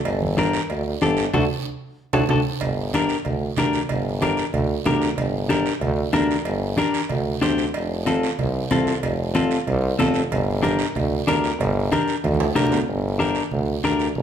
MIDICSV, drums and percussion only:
0, 0, Header, 1, 2, 480
1, 0, Start_track
1, 0, Key_signature, -2, "minor"
1, 0, Tempo, 320856
1, 73, Time_signature, 4, 2, 24, 8
1, 21279, End_track
2, 0, Start_track
2, 0, Title_t, "Drums"
2, 78, Note_on_c, 9, 56, 107
2, 92, Note_on_c, 9, 74, 74
2, 228, Note_off_c, 9, 56, 0
2, 242, Note_off_c, 9, 74, 0
2, 326, Note_on_c, 9, 63, 77
2, 476, Note_off_c, 9, 63, 0
2, 559, Note_on_c, 9, 63, 80
2, 568, Note_on_c, 9, 73, 69
2, 709, Note_off_c, 9, 63, 0
2, 718, Note_off_c, 9, 73, 0
2, 799, Note_on_c, 9, 73, 75
2, 949, Note_off_c, 9, 73, 0
2, 1042, Note_on_c, 9, 74, 70
2, 1044, Note_on_c, 9, 56, 81
2, 1191, Note_off_c, 9, 74, 0
2, 1194, Note_off_c, 9, 56, 0
2, 1510, Note_on_c, 9, 73, 74
2, 1522, Note_on_c, 9, 66, 66
2, 1523, Note_on_c, 9, 63, 84
2, 1660, Note_off_c, 9, 73, 0
2, 1671, Note_off_c, 9, 66, 0
2, 1672, Note_off_c, 9, 63, 0
2, 1747, Note_on_c, 9, 73, 72
2, 1897, Note_off_c, 9, 73, 0
2, 1997, Note_on_c, 9, 64, 108
2, 1997, Note_on_c, 9, 74, 101
2, 2005, Note_on_c, 9, 65, 100
2, 2147, Note_off_c, 9, 64, 0
2, 2147, Note_off_c, 9, 74, 0
2, 2154, Note_off_c, 9, 65, 0
2, 3186, Note_on_c, 9, 74, 106
2, 3188, Note_on_c, 9, 64, 97
2, 3189, Note_on_c, 9, 65, 114
2, 3336, Note_off_c, 9, 74, 0
2, 3338, Note_off_c, 9, 64, 0
2, 3339, Note_off_c, 9, 65, 0
2, 3420, Note_on_c, 9, 74, 112
2, 3423, Note_on_c, 9, 65, 100
2, 3425, Note_on_c, 9, 64, 110
2, 3569, Note_off_c, 9, 74, 0
2, 3573, Note_off_c, 9, 65, 0
2, 3574, Note_off_c, 9, 64, 0
2, 3903, Note_on_c, 9, 56, 100
2, 3908, Note_on_c, 9, 74, 76
2, 3910, Note_on_c, 9, 63, 33
2, 3910, Note_on_c, 9, 64, 70
2, 4053, Note_off_c, 9, 56, 0
2, 4057, Note_off_c, 9, 74, 0
2, 4059, Note_off_c, 9, 63, 0
2, 4059, Note_off_c, 9, 64, 0
2, 4382, Note_on_c, 9, 63, 80
2, 4396, Note_on_c, 9, 56, 68
2, 4396, Note_on_c, 9, 73, 62
2, 4532, Note_off_c, 9, 63, 0
2, 4545, Note_off_c, 9, 56, 0
2, 4545, Note_off_c, 9, 73, 0
2, 4622, Note_on_c, 9, 73, 73
2, 4772, Note_off_c, 9, 73, 0
2, 4860, Note_on_c, 9, 56, 78
2, 4862, Note_on_c, 9, 74, 61
2, 4876, Note_on_c, 9, 63, 35
2, 4876, Note_on_c, 9, 64, 79
2, 5009, Note_off_c, 9, 56, 0
2, 5011, Note_off_c, 9, 74, 0
2, 5026, Note_off_c, 9, 63, 0
2, 5026, Note_off_c, 9, 64, 0
2, 5334, Note_on_c, 9, 73, 76
2, 5341, Note_on_c, 9, 63, 76
2, 5341, Note_on_c, 9, 64, 73
2, 5349, Note_on_c, 9, 56, 67
2, 5484, Note_off_c, 9, 73, 0
2, 5491, Note_off_c, 9, 63, 0
2, 5491, Note_off_c, 9, 64, 0
2, 5499, Note_off_c, 9, 56, 0
2, 5584, Note_on_c, 9, 73, 76
2, 5734, Note_off_c, 9, 73, 0
2, 5819, Note_on_c, 9, 74, 69
2, 5823, Note_on_c, 9, 56, 100
2, 5839, Note_on_c, 9, 63, 35
2, 5839, Note_on_c, 9, 64, 73
2, 5968, Note_off_c, 9, 74, 0
2, 5972, Note_off_c, 9, 56, 0
2, 5988, Note_off_c, 9, 63, 0
2, 5988, Note_off_c, 9, 64, 0
2, 6305, Note_on_c, 9, 63, 77
2, 6307, Note_on_c, 9, 73, 64
2, 6315, Note_on_c, 9, 56, 64
2, 6454, Note_off_c, 9, 63, 0
2, 6457, Note_off_c, 9, 73, 0
2, 6465, Note_off_c, 9, 56, 0
2, 6541, Note_on_c, 9, 73, 70
2, 6691, Note_off_c, 9, 73, 0
2, 6775, Note_on_c, 9, 74, 70
2, 6787, Note_on_c, 9, 63, 32
2, 6787, Note_on_c, 9, 64, 79
2, 6790, Note_on_c, 9, 56, 83
2, 6925, Note_off_c, 9, 74, 0
2, 6937, Note_off_c, 9, 63, 0
2, 6937, Note_off_c, 9, 64, 0
2, 6940, Note_off_c, 9, 56, 0
2, 7264, Note_on_c, 9, 56, 65
2, 7264, Note_on_c, 9, 66, 68
2, 7264, Note_on_c, 9, 73, 64
2, 7271, Note_on_c, 9, 63, 78
2, 7271, Note_on_c, 9, 64, 77
2, 7414, Note_off_c, 9, 56, 0
2, 7414, Note_off_c, 9, 66, 0
2, 7414, Note_off_c, 9, 73, 0
2, 7421, Note_off_c, 9, 63, 0
2, 7421, Note_off_c, 9, 64, 0
2, 7505, Note_on_c, 9, 73, 67
2, 7654, Note_off_c, 9, 73, 0
2, 7746, Note_on_c, 9, 63, 35
2, 7746, Note_on_c, 9, 64, 71
2, 7746, Note_on_c, 9, 74, 67
2, 7748, Note_on_c, 9, 56, 98
2, 7895, Note_off_c, 9, 63, 0
2, 7895, Note_off_c, 9, 64, 0
2, 7896, Note_off_c, 9, 74, 0
2, 7897, Note_off_c, 9, 56, 0
2, 8217, Note_on_c, 9, 73, 60
2, 8224, Note_on_c, 9, 63, 67
2, 8229, Note_on_c, 9, 56, 68
2, 8367, Note_off_c, 9, 73, 0
2, 8373, Note_off_c, 9, 63, 0
2, 8379, Note_off_c, 9, 56, 0
2, 8463, Note_on_c, 9, 73, 64
2, 8613, Note_off_c, 9, 73, 0
2, 8697, Note_on_c, 9, 56, 82
2, 8710, Note_on_c, 9, 74, 67
2, 8713, Note_on_c, 9, 63, 32
2, 8713, Note_on_c, 9, 64, 75
2, 8847, Note_off_c, 9, 56, 0
2, 8859, Note_off_c, 9, 74, 0
2, 8863, Note_off_c, 9, 63, 0
2, 8863, Note_off_c, 9, 64, 0
2, 9170, Note_on_c, 9, 56, 69
2, 9170, Note_on_c, 9, 66, 75
2, 9181, Note_on_c, 9, 63, 79
2, 9186, Note_on_c, 9, 73, 75
2, 9320, Note_off_c, 9, 56, 0
2, 9320, Note_off_c, 9, 66, 0
2, 9330, Note_off_c, 9, 63, 0
2, 9336, Note_off_c, 9, 73, 0
2, 9437, Note_on_c, 9, 73, 70
2, 9587, Note_off_c, 9, 73, 0
2, 9652, Note_on_c, 9, 63, 34
2, 9653, Note_on_c, 9, 56, 94
2, 9674, Note_on_c, 9, 74, 75
2, 9802, Note_off_c, 9, 63, 0
2, 9803, Note_off_c, 9, 56, 0
2, 9823, Note_off_c, 9, 74, 0
2, 10129, Note_on_c, 9, 63, 70
2, 10137, Note_on_c, 9, 56, 64
2, 10150, Note_on_c, 9, 73, 66
2, 10279, Note_off_c, 9, 63, 0
2, 10287, Note_off_c, 9, 56, 0
2, 10299, Note_off_c, 9, 73, 0
2, 10383, Note_on_c, 9, 73, 63
2, 10532, Note_off_c, 9, 73, 0
2, 10612, Note_on_c, 9, 56, 83
2, 10620, Note_on_c, 9, 63, 33
2, 10620, Note_on_c, 9, 64, 78
2, 10630, Note_on_c, 9, 74, 72
2, 10762, Note_off_c, 9, 56, 0
2, 10769, Note_off_c, 9, 63, 0
2, 10769, Note_off_c, 9, 64, 0
2, 10779, Note_off_c, 9, 74, 0
2, 11099, Note_on_c, 9, 63, 74
2, 11107, Note_on_c, 9, 56, 64
2, 11107, Note_on_c, 9, 66, 73
2, 11113, Note_on_c, 9, 73, 74
2, 11248, Note_off_c, 9, 63, 0
2, 11257, Note_off_c, 9, 56, 0
2, 11257, Note_off_c, 9, 66, 0
2, 11263, Note_off_c, 9, 73, 0
2, 11340, Note_on_c, 9, 73, 70
2, 11490, Note_off_c, 9, 73, 0
2, 11581, Note_on_c, 9, 56, 100
2, 11583, Note_on_c, 9, 74, 72
2, 11587, Note_on_c, 9, 63, 36
2, 11731, Note_off_c, 9, 56, 0
2, 11733, Note_off_c, 9, 74, 0
2, 11737, Note_off_c, 9, 63, 0
2, 12061, Note_on_c, 9, 73, 71
2, 12068, Note_on_c, 9, 63, 70
2, 12069, Note_on_c, 9, 56, 68
2, 12211, Note_off_c, 9, 73, 0
2, 12218, Note_off_c, 9, 63, 0
2, 12219, Note_off_c, 9, 56, 0
2, 12318, Note_on_c, 9, 73, 68
2, 12467, Note_off_c, 9, 73, 0
2, 12548, Note_on_c, 9, 63, 37
2, 12548, Note_on_c, 9, 64, 88
2, 12551, Note_on_c, 9, 56, 77
2, 12554, Note_on_c, 9, 74, 68
2, 12697, Note_off_c, 9, 63, 0
2, 12697, Note_off_c, 9, 64, 0
2, 12700, Note_off_c, 9, 56, 0
2, 12704, Note_off_c, 9, 74, 0
2, 13024, Note_on_c, 9, 73, 70
2, 13026, Note_on_c, 9, 56, 66
2, 13034, Note_on_c, 9, 63, 78
2, 13034, Note_on_c, 9, 64, 72
2, 13174, Note_off_c, 9, 73, 0
2, 13175, Note_off_c, 9, 56, 0
2, 13184, Note_off_c, 9, 63, 0
2, 13184, Note_off_c, 9, 64, 0
2, 13271, Note_on_c, 9, 73, 76
2, 13421, Note_off_c, 9, 73, 0
2, 13509, Note_on_c, 9, 74, 73
2, 13511, Note_on_c, 9, 56, 98
2, 13511, Note_on_c, 9, 63, 34
2, 13511, Note_on_c, 9, 64, 75
2, 13659, Note_off_c, 9, 74, 0
2, 13661, Note_off_c, 9, 56, 0
2, 13661, Note_off_c, 9, 63, 0
2, 13661, Note_off_c, 9, 64, 0
2, 13979, Note_on_c, 9, 73, 68
2, 13985, Note_on_c, 9, 56, 66
2, 13987, Note_on_c, 9, 63, 81
2, 14129, Note_off_c, 9, 73, 0
2, 14135, Note_off_c, 9, 56, 0
2, 14137, Note_off_c, 9, 63, 0
2, 14223, Note_on_c, 9, 73, 73
2, 14373, Note_off_c, 9, 73, 0
2, 14470, Note_on_c, 9, 74, 73
2, 14473, Note_on_c, 9, 56, 81
2, 14475, Note_on_c, 9, 63, 37
2, 14475, Note_on_c, 9, 64, 79
2, 14620, Note_off_c, 9, 74, 0
2, 14623, Note_off_c, 9, 56, 0
2, 14625, Note_off_c, 9, 63, 0
2, 14625, Note_off_c, 9, 64, 0
2, 14947, Note_on_c, 9, 73, 66
2, 14952, Note_on_c, 9, 63, 79
2, 14952, Note_on_c, 9, 64, 72
2, 14953, Note_on_c, 9, 56, 68
2, 14953, Note_on_c, 9, 66, 74
2, 15096, Note_off_c, 9, 73, 0
2, 15101, Note_off_c, 9, 63, 0
2, 15101, Note_off_c, 9, 64, 0
2, 15102, Note_off_c, 9, 56, 0
2, 15102, Note_off_c, 9, 66, 0
2, 15168, Note_on_c, 9, 73, 75
2, 15318, Note_off_c, 9, 73, 0
2, 15419, Note_on_c, 9, 74, 74
2, 15438, Note_on_c, 9, 56, 108
2, 15443, Note_on_c, 9, 63, 36
2, 15443, Note_on_c, 9, 64, 82
2, 15568, Note_off_c, 9, 74, 0
2, 15588, Note_off_c, 9, 56, 0
2, 15593, Note_off_c, 9, 63, 0
2, 15593, Note_off_c, 9, 64, 0
2, 15906, Note_on_c, 9, 73, 65
2, 15920, Note_on_c, 9, 63, 72
2, 15925, Note_on_c, 9, 56, 63
2, 16055, Note_off_c, 9, 73, 0
2, 16069, Note_off_c, 9, 63, 0
2, 16075, Note_off_c, 9, 56, 0
2, 16139, Note_on_c, 9, 73, 75
2, 16288, Note_off_c, 9, 73, 0
2, 16385, Note_on_c, 9, 74, 71
2, 16393, Note_on_c, 9, 63, 36
2, 16393, Note_on_c, 9, 64, 81
2, 16401, Note_on_c, 9, 56, 87
2, 16535, Note_off_c, 9, 74, 0
2, 16542, Note_off_c, 9, 63, 0
2, 16542, Note_off_c, 9, 64, 0
2, 16550, Note_off_c, 9, 56, 0
2, 16867, Note_on_c, 9, 63, 81
2, 16874, Note_on_c, 9, 73, 78
2, 16878, Note_on_c, 9, 56, 74
2, 16878, Note_on_c, 9, 66, 74
2, 17017, Note_off_c, 9, 63, 0
2, 17024, Note_off_c, 9, 73, 0
2, 17027, Note_off_c, 9, 56, 0
2, 17027, Note_off_c, 9, 66, 0
2, 17115, Note_on_c, 9, 73, 65
2, 17265, Note_off_c, 9, 73, 0
2, 17350, Note_on_c, 9, 74, 71
2, 17355, Note_on_c, 9, 63, 34
2, 17355, Note_on_c, 9, 64, 72
2, 17364, Note_on_c, 9, 56, 98
2, 17500, Note_off_c, 9, 74, 0
2, 17505, Note_off_c, 9, 63, 0
2, 17505, Note_off_c, 9, 64, 0
2, 17513, Note_off_c, 9, 56, 0
2, 17829, Note_on_c, 9, 63, 84
2, 17835, Note_on_c, 9, 73, 64
2, 17836, Note_on_c, 9, 56, 71
2, 17978, Note_off_c, 9, 63, 0
2, 17984, Note_off_c, 9, 73, 0
2, 17986, Note_off_c, 9, 56, 0
2, 18067, Note_on_c, 9, 73, 70
2, 18217, Note_off_c, 9, 73, 0
2, 18311, Note_on_c, 9, 74, 70
2, 18314, Note_on_c, 9, 63, 82
2, 18315, Note_on_c, 9, 56, 86
2, 18461, Note_off_c, 9, 74, 0
2, 18464, Note_off_c, 9, 56, 0
2, 18464, Note_off_c, 9, 63, 0
2, 18469, Note_on_c, 9, 63, 88
2, 18553, Note_on_c, 9, 65, 116
2, 18618, Note_off_c, 9, 63, 0
2, 18703, Note_off_c, 9, 65, 0
2, 18783, Note_on_c, 9, 64, 77
2, 18790, Note_on_c, 9, 56, 67
2, 18792, Note_on_c, 9, 73, 82
2, 18932, Note_off_c, 9, 64, 0
2, 18940, Note_off_c, 9, 56, 0
2, 18941, Note_off_c, 9, 73, 0
2, 18948, Note_on_c, 9, 64, 109
2, 19026, Note_on_c, 9, 73, 80
2, 19031, Note_on_c, 9, 66, 88
2, 19097, Note_off_c, 9, 64, 0
2, 19105, Note_on_c, 9, 64, 92
2, 19175, Note_off_c, 9, 73, 0
2, 19181, Note_off_c, 9, 66, 0
2, 19255, Note_off_c, 9, 64, 0
2, 19257, Note_on_c, 9, 63, 37
2, 19270, Note_on_c, 9, 74, 64
2, 19406, Note_off_c, 9, 63, 0
2, 19420, Note_off_c, 9, 74, 0
2, 19741, Note_on_c, 9, 63, 73
2, 19752, Note_on_c, 9, 73, 59
2, 19891, Note_off_c, 9, 63, 0
2, 19901, Note_off_c, 9, 73, 0
2, 19971, Note_on_c, 9, 73, 70
2, 20121, Note_off_c, 9, 73, 0
2, 20217, Note_on_c, 9, 63, 34
2, 20217, Note_on_c, 9, 64, 77
2, 20222, Note_on_c, 9, 74, 75
2, 20366, Note_off_c, 9, 63, 0
2, 20366, Note_off_c, 9, 64, 0
2, 20371, Note_off_c, 9, 74, 0
2, 20700, Note_on_c, 9, 63, 78
2, 20703, Note_on_c, 9, 73, 70
2, 20850, Note_off_c, 9, 63, 0
2, 20852, Note_off_c, 9, 73, 0
2, 20935, Note_on_c, 9, 73, 69
2, 21085, Note_off_c, 9, 73, 0
2, 21173, Note_on_c, 9, 74, 66
2, 21176, Note_on_c, 9, 63, 33
2, 21176, Note_on_c, 9, 64, 67
2, 21279, Note_off_c, 9, 63, 0
2, 21279, Note_off_c, 9, 64, 0
2, 21279, Note_off_c, 9, 74, 0
2, 21279, End_track
0, 0, End_of_file